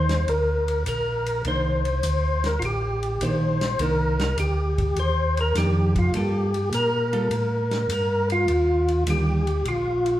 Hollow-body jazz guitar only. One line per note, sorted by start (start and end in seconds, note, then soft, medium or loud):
1.45 1.81 D#3 medium
1.45 1.82 A#3 medium
1.45 1.82 D4 medium
3.21 3.57 D#3 medium
3.21 3.58 A#3 medium
3.21 3.58 D4 medium
3.79 4.15 D#3 medium
3.79 4.16 A#3 medium
3.79 4.16 D4 medium
5.56 5.92 D#3 soft
5.56 5.92 A#3 medium
5.56 5.93 D4 medium
6.14 6.50 G3 medium
6.14 6.51 A#3 medium
6.14 6.51 F4 medium
6.14 6.51 A4 medium
7.13 7.29 G3 medium
7.13 7.29 A#3 medium
7.13 7.29 F4 medium
7.13 7.29 A4 medium
9.07 9.43 D#3 soft
9.07 9.43 G3 soft
9.07 9.43 A#3 medium
9.07 9.43 D4 soft